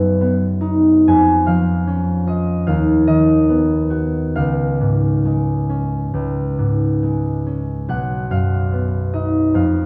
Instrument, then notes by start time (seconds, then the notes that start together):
harp
Already playing: F#2 F#3 B3 D#4 F#4 G#4 B4
0.21 B3
0.61 D#4
1.08 F2 G#5
1.47 F3 F5
1.87 C#4
2.27 F4 D#5
2.67 D#2 F5
3.08 D#3 D#5
3.49 B3
3.90 F#4
4.36 C#2 F5
4.81 G#2
5.25 G#3
5.69 C#4
6.13 C#2
6.59 G#2
7.03 G#3
7.47 C#4
7.89 B1 F#5
8.30 F#2 F5
8.73 B3
9.14 D#4 D#5
9.54 F2 F5